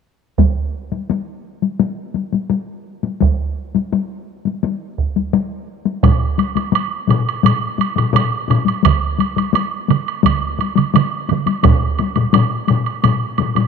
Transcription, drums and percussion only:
0.38 taiko, taiko high
0.92 taiko high
1.10 taiko high
1.62 taiko high
1.80 taiko high
2.14 taiko high
2.33 taiko high
2.50 taiko high
3.03 taiko high
3.21 taiko, taiko high
3.75 taiko high
3.93 taiko high
4.45 taiko high
4.63 taiko high
4.98 taiko
5.16 taiko high
5.33 taiko high
5.85 taiko high
6.03 taiko, taiko low-mid, taiko high, high woodblock
6.38 taiko high, high woodblock
6.56 taiko high, high woodblock
6.72 taiko high, high woodblock
7.07 taiko low-mid, taiko high, high woodblock
7.29 high woodblock
7.43 taiko low-mid, taiko high, high woodblock
7.78 taiko high, high woodblock
7.96 taiko low-mid, taiko high, high woodblock
8.13 taiko low-mid, taiko high, high woodblock
8.48 taiko low-mid, taiko high, high woodblock
8.66 taiko high, high woodblock
8.83 taiko, taiko mid, taiko high, high woodblock
9.18 taiko high, high woodblock
9.36 taiko high, high woodblock
9.53 taiko high, high woodblock
9.88 taiko mid, taiko high, high woodblock
10.08 high woodblock
10.23 taiko, taiko mid, taiko high, high woodblock
10.59 taiko high, high woodblock
10.76 taiko mid, taiko high, high woodblock
10.94 taiko mid, taiko high, high woodblock
11.29 taiko mid, taiko high, high woodblock
11.46 taiko high, high woodblock
11.63 taiko, taiko low-mid, taiko high, high woodblock
11.99 taiko high, high woodblock
12.16 taiko low-mid, taiko high, high woodblock
12.33 taiko low-mid, taiko high, high woodblock
12.68 taiko low-mid, taiko high, high woodblock
12.86 high woodblock
13.04 taiko low-mid, taiko high, high woodblock
13.38 taiko low-mid, taiko high, high woodblock
13.55 taiko low-mid, taiko high, high woodblock

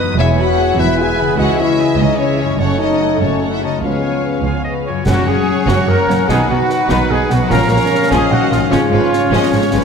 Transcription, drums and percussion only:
5.07 concert bass drum, snare, crash
5.68 concert bass drum, snare
6.10 snare
6.29 concert bass drum, snare
6.70 snare
6.89 concert bass drum, snare
7.30 snare
7.50 concert bass drum, snare
8.11 concert bass drum, snare
8.52 snare
8.72 concert bass drum, snare
9.13 snare
9.33 concert bass drum, snare

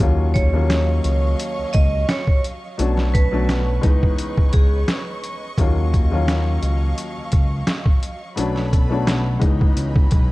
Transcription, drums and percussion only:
0.00 closed hi-hat
0.35 kick, closed hi-hat
0.70 snare, closed hi-hat
1.04 closed hi-hat
1.39 closed hi-hat
1.73 kick, closed hi-hat
2.09 snare, closed hi-hat
2.27 kick
2.44 closed hi-hat
2.79 closed hi-hat
2.97 snare
3.15 kick, closed hi-hat
3.49 snare, closed hi-hat
3.83 kick, closed hi-hat
4.03 kick
4.18 closed hi-hat
4.38 kick
4.53 kick, closed hi-hat
4.88 snare, closed hi-hat
5.24 closed hi-hat
5.58 kick, closed hi-hat
5.94 kick, closed hi-hat
6.28 snare, closed hi-hat
6.63 closed hi-hat
6.98 closed hi-hat
7.32 kick, closed hi-hat
7.67 snare, closed hi-hat
7.86 kick
8.03 closed hi-hat
8.37 closed hi-hat
8.56 snare
8.73 kick, closed hi-hat
9.07 snare, closed hi-hat
9.42 kick, closed hi-hat
9.61 kick
9.77 closed hi-hat
9.96 kick
10.11 kick, closed hi-hat

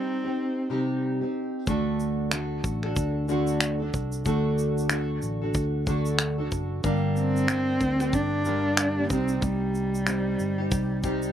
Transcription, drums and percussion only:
1.67 kick, shaker
2.00 shaker
2.31 finger snap, shaker
2.64 kick, shaker
2.83 finger snap
2.96 kick, shaker
3.29 shaker
3.47 shaker
3.61 finger snap, shaker
3.94 kick, shaker
4.12 shaker
4.25 kick, shaker
4.58 shaker
4.78 shaker
4.90 finger snap, shaker
5.22 shaker
5.54 kick, shaker
5.87 kick, shaker
6.06 shaker
6.19 finger snap, shaker
6.52 kick, shaker
6.84 kick, shaker
7.16 shaker
7.36 shaker
7.48 finger snap, shaker
7.80 kick, shaker
8.00 finger snap, shaker
8.13 kick, shaker
8.45 shaker
8.77 finger snap, shaker
9.10 kick, shaker
9.28 shaker
9.42 kick, shaker
9.75 shaker
9.95 shaker
10.07 finger snap, shaker
10.39 shaker
10.71 kick, shaker
11.03 kick, shaker
11.22 shaker

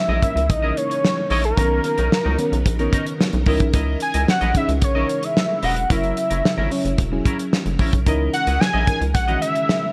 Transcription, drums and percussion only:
0.22 kick, closed hi-hat
0.37 closed hi-hat
0.50 kick, closed hi-hat
0.77 closed hi-hat
0.91 closed hi-hat
1.05 snare
1.30 open hi-hat
1.44 closed hi-hat
1.57 kick, closed hi-hat
1.84 closed hi-hat
1.98 closed hi-hat
2.12 snare
2.39 closed hi-hat
2.53 closed hi-hat
2.66 kick, closed hi-hat
2.79 closed hi-hat
2.93 kick, closed hi-hat
3.07 closed hi-hat
3.21 snare
3.33 closed hi-hat
3.46 kick, open hi-hat
3.60 kick, closed hi-hat
3.73 kick, closed hi-hat
4.00 closed hi-hat
4.14 closed hi-hat
4.28 snare
4.41 closed hi-hat
4.55 kick, closed hi-hat
4.69 closed hi-hat
4.82 kick, closed hi-hat
5.09 closed hi-hat
5.23 closed hi-hat
5.37 snare
5.63 open hi-hat
5.76 closed hi-hat
5.90 kick, closed hi-hat
6.03 closed hi-hat
6.17 closed hi-hat
6.31 closed hi-hat
6.45 snare
6.71 open hi-hat
6.85 closed hi-hat
6.98 kick, closed hi-hat
7.25 kick, closed hi-hat
7.39 closed hi-hat
7.53 snare
7.66 closed hi-hat
7.79 kick, open hi-hat
7.93 kick, closed hi-hat
8.06 kick, closed hi-hat
8.34 closed hi-hat
8.47 closed hi-hat
8.61 snare
8.87 kick, closed hi-hat
9.02 closed hi-hat
9.15 kick, closed hi-hat
9.28 closed hi-hat
9.42 closed hi-hat
9.55 closed hi-hat
9.69 snare

